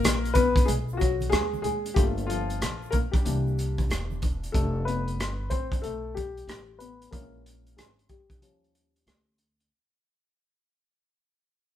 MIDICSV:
0, 0, Header, 1, 4, 480
1, 0, Start_track
1, 0, Tempo, 645161
1, 1463, Time_signature, 4, 2, 24, 8
1, 8746, End_track
2, 0, Start_track
2, 0, Title_t, "Grand piano"
2, 0, Program_c, 0, 0
2, 0, Note_on_c, 0, 58, 77
2, 0, Note_on_c, 0, 70, 100
2, 234, Note_off_c, 0, 58, 0
2, 250, Note_on_c, 0, 71, 99
2, 270, Note_on_c, 0, 59, 69
2, 271, Note_off_c, 0, 70, 0
2, 487, Note_on_c, 0, 68, 85
2, 490, Note_off_c, 0, 59, 0
2, 504, Note_off_c, 0, 71, 0
2, 506, Note_on_c, 0, 56, 74
2, 534, Note_off_c, 0, 68, 0
2, 552, Note_off_c, 0, 56, 0
2, 693, Note_on_c, 0, 65, 60
2, 724, Note_on_c, 0, 66, 81
2, 736, Note_off_c, 0, 65, 0
2, 744, Note_on_c, 0, 54, 66
2, 964, Note_on_c, 0, 68, 100
2, 967, Note_off_c, 0, 54, 0
2, 981, Note_off_c, 0, 66, 0
2, 984, Note_on_c, 0, 56, 75
2, 1195, Note_off_c, 0, 68, 0
2, 1207, Note_off_c, 0, 56, 0
2, 1207, Note_on_c, 0, 68, 88
2, 1232, Note_on_c, 0, 56, 68
2, 1445, Note_on_c, 0, 67, 83
2, 1451, Note_off_c, 0, 56, 0
2, 1459, Note_on_c, 0, 57, 55
2, 1462, Note_off_c, 0, 68, 0
2, 1462, Note_on_c, 0, 58, 50
2, 1468, Note_on_c, 0, 55, 66
2, 1469, Note_on_c, 0, 65, 55
2, 1501, Note_off_c, 0, 67, 0
2, 1521, Note_off_c, 0, 55, 0
2, 1674, Note_off_c, 0, 65, 0
2, 1685, Note_on_c, 0, 65, 86
2, 1706, Note_on_c, 0, 53, 68
2, 2144, Note_off_c, 0, 65, 0
2, 2155, Note_off_c, 0, 53, 0
2, 2162, Note_on_c, 0, 70, 83
2, 2177, Note_off_c, 0, 58, 0
2, 2188, Note_on_c, 0, 58, 62
2, 2199, Note_off_c, 0, 70, 0
2, 2226, Note_off_c, 0, 58, 0
2, 2317, Note_on_c, 0, 67, 72
2, 2340, Note_on_c, 0, 55, 61
2, 2391, Note_off_c, 0, 57, 0
2, 2418, Note_on_c, 0, 52, 54
2, 2423, Note_on_c, 0, 58, 47
2, 2425, Note_on_c, 0, 62, 62
2, 3102, Note_off_c, 0, 67, 0
2, 3113, Note_off_c, 0, 55, 0
2, 3351, Note_off_c, 0, 52, 0
2, 3353, Note_off_c, 0, 58, 0
2, 3354, Note_off_c, 0, 62, 0
2, 3365, Note_on_c, 0, 69, 88
2, 3374, Note_on_c, 0, 55, 48
2, 3376, Note_on_c, 0, 57, 70
2, 3382, Note_on_c, 0, 62, 57
2, 3605, Note_off_c, 0, 57, 0
2, 3609, Note_on_c, 0, 71, 96
2, 3621, Note_off_c, 0, 69, 0
2, 3628, Note_on_c, 0, 59, 72
2, 3725, Note_off_c, 0, 55, 0
2, 3730, Note_off_c, 0, 62, 0
2, 4076, Note_off_c, 0, 59, 0
2, 4092, Note_on_c, 0, 72, 90
2, 4110, Note_off_c, 0, 71, 0
2, 4111, Note_on_c, 0, 60, 69
2, 4328, Note_on_c, 0, 69, 86
2, 4330, Note_off_c, 0, 60, 0
2, 4344, Note_off_c, 0, 72, 0
2, 4345, Note_on_c, 0, 57, 74
2, 4567, Note_off_c, 0, 57, 0
2, 4572, Note_on_c, 0, 67, 100
2, 4583, Note_off_c, 0, 69, 0
2, 4584, Note_on_c, 0, 55, 63
2, 5028, Note_off_c, 0, 67, 0
2, 5034, Note_off_c, 0, 55, 0
2, 5049, Note_on_c, 0, 71, 84
2, 5066, Note_on_c, 0, 59, 64
2, 5288, Note_off_c, 0, 59, 0
2, 5290, Note_on_c, 0, 70, 80
2, 5293, Note_on_c, 0, 52, 51
2, 5297, Note_on_c, 0, 56, 49
2, 5300, Note_on_c, 0, 61, 58
2, 5303, Note_off_c, 0, 71, 0
2, 5304, Note_on_c, 0, 58, 68
2, 5754, Note_off_c, 0, 58, 0
2, 5776, Note_off_c, 0, 56, 0
2, 5778, Note_on_c, 0, 68, 69
2, 5787, Note_on_c, 0, 56, 54
2, 5791, Note_off_c, 0, 70, 0
2, 5832, Note_off_c, 0, 68, 0
2, 5840, Note_off_c, 0, 56, 0
2, 6020, Note_on_c, 0, 67, 73
2, 6030, Note_on_c, 0, 55, 59
2, 6228, Note_off_c, 0, 52, 0
2, 6232, Note_off_c, 0, 61, 0
2, 6252, Note_off_c, 0, 55, 0
2, 6258, Note_on_c, 0, 53, 52
2, 6263, Note_on_c, 0, 55, 48
2, 6268, Note_on_c, 0, 61, 56
2, 6951, Note_off_c, 0, 53, 0
2, 6951, Note_off_c, 0, 67, 0
2, 6953, Note_off_c, 0, 55, 0
2, 6956, Note_off_c, 0, 61, 0
2, 8746, End_track
3, 0, Start_track
3, 0, Title_t, "Upright bass"
3, 0, Program_c, 1, 32
3, 25, Note_on_c, 1, 34, 82
3, 480, Note_off_c, 1, 34, 0
3, 506, Note_on_c, 1, 35, 88
3, 960, Note_off_c, 1, 35, 0
3, 984, Note_on_c, 1, 39, 84
3, 1440, Note_off_c, 1, 39, 0
3, 1461, Note_on_c, 1, 31, 101
3, 1918, Note_off_c, 1, 31, 0
3, 1944, Note_on_c, 1, 34, 75
3, 2400, Note_off_c, 1, 34, 0
3, 2420, Note_on_c, 1, 36, 94
3, 2877, Note_off_c, 1, 36, 0
3, 2899, Note_on_c, 1, 28, 84
3, 3357, Note_off_c, 1, 28, 0
3, 3380, Note_on_c, 1, 29, 97
3, 3863, Note_off_c, 1, 29, 0
3, 3863, Note_on_c, 1, 31, 67
3, 4091, Note_off_c, 1, 31, 0
3, 4103, Note_on_c, 1, 33, 81
3, 4331, Note_off_c, 1, 33, 0
3, 4344, Note_on_c, 1, 35, 78
3, 4799, Note_off_c, 1, 35, 0
3, 4817, Note_on_c, 1, 33, 86
3, 5276, Note_off_c, 1, 33, 0
3, 5302, Note_on_c, 1, 34, 90
3, 5758, Note_off_c, 1, 34, 0
3, 5784, Note_on_c, 1, 32, 67
3, 6263, Note_off_c, 1, 32, 0
3, 6263, Note_on_c, 1, 39, 86
3, 6719, Note_off_c, 1, 39, 0
3, 6744, Note_on_c, 1, 38, 74
3, 7199, Note_off_c, 1, 38, 0
3, 8746, End_track
4, 0, Start_track
4, 0, Title_t, "Drums"
4, 25, Note_on_c, 9, 63, 45
4, 25, Note_on_c, 9, 82, 66
4, 34, Note_on_c, 9, 42, 100
4, 38, Note_on_c, 9, 37, 103
4, 100, Note_off_c, 9, 63, 0
4, 100, Note_off_c, 9, 82, 0
4, 108, Note_off_c, 9, 42, 0
4, 112, Note_off_c, 9, 37, 0
4, 187, Note_on_c, 9, 82, 49
4, 188, Note_on_c, 9, 42, 36
4, 259, Note_off_c, 9, 42, 0
4, 259, Note_on_c, 9, 42, 67
4, 261, Note_off_c, 9, 82, 0
4, 261, Note_on_c, 9, 64, 58
4, 261, Note_on_c, 9, 82, 42
4, 264, Note_on_c, 9, 36, 78
4, 334, Note_off_c, 9, 42, 0
4, 336, Note_off_c, 9, 64, 0
4, 336, Note_off_c, 9, 82, 0
4, 338, Note_off_c, 9, 36, 0
4, 415, Note_on_c, 9, 36, 102
4, 423, Note_on_c, 9, 42, 53
4, 425, Note_on_c, 9, 82, 35
4, 489, Note_off_c, 9, 36, 0
4, 498, Note_off_c, 9, 42, 0
4, 500, Note_off_c, 9, 82, 0
4, 501, Note_on_c, 9, 82, 63
4, 508, Note_on_c, 9, 42, 74
4, 576, Note_off_c, 9, 82, 0
4, 582, Note_off_c, 9, 42, 0
4, 659, Note_on_c, 9, 82, 44
4, 734, Note_off_c, 9, 82, 0
4, 742, Note_on_c, 9, 82, 44
4, 754, Note_on_c, 9, 36, 74
4, 754, Note_on_c, 9, 42, 73
4, 816, Note_off_c, 9, 82, 0
4, 828, Note_off_c, 9, 36, 0
4, 828, Note_off_c, 9, 42, 0
4, 896, Note_on_c, 9, 63, 52
4, 896, Note_on_c, 9, 82, 37
4, 905, Note_on_c, 9, 42, 45
4, 971, Note_off_c, 9, 63, 0
4, 971, Note_off_c, 9, 82, 0
4, 980, Note_off_c, 9, 42, 0
4, 981, Note_on_c, 9, 82, 61
4, 984, Note_on_c, 9, 42, 69
4, 991, Note_on_c, 9, 37, 105
4, 1056, Note_off_c, 9, 82, 0
4, 1058, Note_off_c, 9, 42, 0
4, 1065, Note_off_c, 9, 37, 0
4, 1141, Note_on_c, 9, 63, 53
4, 1141, Note_on_c, 9, 82, 41
4, 1216, Note_off_c, 9, 63, 0
4, 1216, Note_off_c, 9, 82, 0
4, 1220, Note_on_c, 9, 42, 62
4, 1223, Note_on_c, 9, 64, 56
4, 1223, Note_on_c, 9, 82, 37
4, 1295, Note_off_c, 9, 42, 0
4, 1298, Note_off_c, 9, 64, 0
4, 1298, Note_off_c, 9, 82, 0
4, 1382, Note_on_c, 9, 42, 51
4, 1385, Note_on_c, 9, 82, 42
4, 1456, Note_off_c, 9, 42, 0
4, 1459, Note_off_c, 9, 82, 0
4, 1461, Note_on_c, 9, 36, 112
4, 1464, Note_on_c, 9, 42, 80
4, 1466, Note_on_c, 9, 82, 63
4, 1535, Note_off_c, 9, 36, 0
4, 1539, Note_off_c, 9, 42, 0
4, 1541, Note_off_c, 9, 82, 0
4, 1619, Note_on_c, 9, 42, 36
4, 1621, Note_on_c, 9, 82, 43
4, 1693, Note_off_c, 9, 42, 0
4, 1695, Note_off_c, 9, 82, 0
4, 1709, Note_on_c, 9, 42, 76
4, 1713, Note_on_c, 9, 82, 41
4, 1784, Note_off_c, 9, 42, 0
4, 1787, Note_off_c, 9, 82, 0
4, 1858, Note_on_c, 9, 82, 47
4, 1860, Note_on_c, 9, 42, 50
4, 1932, Note_off_c, 9, 82, 0
4, 1934, Note_off_c, 9, 42, 0
4, 1947, Note_on_c, 9, 42, 86
4, 1947, Note_on_c, 9, 63, 47
4, 1947, Note_on_c, 9, 82, 59
4, 1951, Note_on_c, 9, 37, 96
4, 2021, Note_off_c, 9, 63, 0
4, 2021, Note_off_c, 9, 82, 0
4, 2022, Note_off_c, 9, 42, 0
4, 2026, Note_off_c, 9, 37, 0
4, 2104, Note_on_c, 9, 82, 48
4, 2173, Note_on_c, 9, 42, 66
4, 2178, Note_off_c, 9, 82, 0
4, 2181, Note_on_c, 9, 36, 82
4, 2185, Note_on_c, 9, 64, 60
4, 2185, Note_on_c, 9, 82, 44
4, 2247, Note_off_c, 9, 42, 0
4, 2255, Note_off_c, 9, 36, 0
4, 2259, Note_off_c, 9, 64, 0
4, 2259, Note_off_c, 9, 82, 0
4, 2333, Note_on_c, 9, 36, 100
4, 2339, Note_on_c, 9, 42, 53
4, 2346, Note_on_c, 9, 82, 33
4, 2407, Note_off_c, 9, 36, 0
4, 2414, Note_off_c, 9, 42, 0
4, 2421, Note_off_c, 9, 82, 0
4, 2422, Note_on_c, 9, 42, 78
4, 2424, Note_on_c, 9, 82, 64
4, 2497, Note_off_c, 9, 42, 0
4, 2498, Note_off_c, 9, 82, 0
4, 2583, Note_on_c, 9, 82, 38
4, 2657, Note_off_c, 9, 82, 0
4, 2659, Note_on_c, 9, 82, 41
4, 2669, Note_on_c, 9, 42, 71
4, 2733, Note_off_c, 9, 82, 0
4, 2743, Note_off_c, 9, 42, 0
4, 2809, Note_on_c, 9, 63, 45
4, 2809, Note_on_c, 9, 82, 36
4, 2815, Note_on_c, 9, 36, 90
4, 2821, Note_on_c, 9, 42, 44
4, 2883, Note_off_c, 9, 63, 0
4, 2883, Note_off_c, 9, 82, 0
4, 2889, Note_off_c, 9, 36, 0
4, 2895, Note_off_c, 9, 42, 0
4, 2897, Note_on_c, 9, 82, 60
4, 2905, Note_on_c, 9, 42, 68
4, 2913, Note_on_c, 9, 37, 91
4, 2971, Note_off_c, 9, 82, 0
4, 2980, Note_off_c, 9, 42, 0
4, 2987, Note_off_c, 9, 37, 0
4, 3056, Note_on_c, 9, 63, 54
4, 3056, Note_on_c, 9, 82, 41
4, 3130, Note_off_c, 9, 63, 0
4, 3130, Note_off_c, 9, 82, 0
4, 3140, Note_on_c, 9, 42, 59
4, 3140, Note_on_c, 9, 64, 48
4, 3140, Note_on_c, 9, 82, 36
4, 3145, Note_on_c, 9, 36, 82
4, 3214, Note_off_c, 9, 42, 0
4, 3214, Note_off_c, 9, 64, 0
4, 3214, Note_off_c, 9, 82, 0
4, 3219, Note_off_c, 9, 36, 0
4, 3299, Note_on_c, 9, 42, 50
4, 3302, Note_on_c, 9, 82, 40
4, 3374, Note_off_c, 9, 42, 0
4, 3376, Note_off_c, 9, 82, 0
4, 3381, Note_on_c, 9, 36, 109
4, 3384, Note_on_c, 9, 42, 82
4, 3456, Note_off_c, 9, 36, 0
4, 3458, Note_off_c, 9, 42, 0
4, 3629, Note_on_c, 9, 42, 78
4, 3703, Note_off_c, 9, 42, 0
4, 3777, Note_on_c, 9, 42, 47
4, 3852, Note_off_c, 9, 42, 0
4, 3869, Note_on_c, 9, 42, 88
4, 3873, Note_on_c, 9, 37, 109
4, 3944, Note_off_c, 9, 42, 0
4, 3948, Note_off_c, 9, 37, 0
4, 4095, Note_on_c, 9, 42, 60
4, 4102, Note_on_c, 9, 36, 81
4, 4169, Note_off_c, 9, 42, 0
4, 4177, Note_off_c, 9, 36, 0
4, 4253, Note_on_c, 9, 36, 95
4, 4261, Note_on_c, 9, 42, 51
4, 4328, Note_off_c, 9, 36, 0
4, 4335, Note_off_c, 9, 42, 0
4, 4341, Note_on_c, 9, 42, 70
4, 4416, Note_off_c, 9, 42, 0
4, 4589, Note_on_c, 9, 42, 65
4, 4592, Note_on_c, 9, 36, 84
4, 4664, Note_off_c, 9, 42, 0
4, 4666, Note_off_c, 9, 36, 0
4, 4742, Note_on_c, 9, 42, 41
4, 4816, Note_off_c, 9, 42, 0
4, 4825, Note_on_c, 9, 42, 75
4, 4832, Note_on_c, 9, 37, 97
4, 4900, Note_off_c, 9, 42, 0
4, 4907, Note_off_c, 9, 37, 0
4, 5061, Note_on_c, 9, 42, 59
4, 5135, Note_off_c, 9, 42, 0
4, 5221, Note_on_c, 9, 42, 52
4, 5295, Note_off_c, 9, 42, 0
4, 5301, Note_on_c, 9, 36, 99
4, 5303, Note_on_c, 9, 42, 89
4, 5376, Note_off_c, 9, 36, 0
4, 5377, Note_off_c, 9, 42, 0
4, 5551, Note_on_c, 9, 42, 81
4, 5626, Note_off_c, 9, 42, 0
4, 5703, Note_on_c, 9, 42, 44
4, 5777, Note_off_c, 9, 42, 0
4, 5790, Note_on_c, 9, 42, 85
4, 5794, Note_on_c, 9, 37, 103
4, 5864, Note_off_c, 9, 42, 0
4, 5868, Note_off_c, 9, 37, 0
4, 5945, Note_on_c, 9, 42, 31
4, 6019, Note_off_c, 9, 42, 0
4, 6020, Note_on_c, 9, 42, 52
4, 6023, Note_on_c, 9, 36, 74
4, 6094, Note_off_c, 9, 42, 0
4, 6098, Note_off_c, 9, 36, 0
4, 6174, Note_on_c, 9, 36, 91
4, 6180, Note_on_c, 9, 42, 53
4, 6248, Note_off_c, 9, 36, 0
4, 6254, Note_off_c, 9, 42, 0
4, 6266, Note_on_c, 9, 42, 73
4, 6340, Note_off_c, 9, 42, 0
4, 6430, Note_on_c, 9, 42, 25
4, 6505, Note_off_c, 9, 42, 0
4, 6509, Note_on_c, 9, 42, 59
4, 6584, Note_off_c, 9, 42, 0
4, 6666, Note_on_c, 9, 42, 44
4, 6740, Note_off_c, 9, 42, 0
4, 6747, Note_on_c, 9, 42, 64
4, 6754, Note_on_c, 9, 37, 89
4, 6821, Note_off_c, 9, 42, 0
4, 6828, Note_off_c, 9, 37, 0
4, 6980, Note_on_c, 9, 42, 57
4, 7054, Note_off_c, 9, 42, 0
4, 7144, Note_on_c, 9, 42, 47
4, 7218, Note_off_c, 9, 42, 0
4, 8746, End_track
0, 0, End_of_file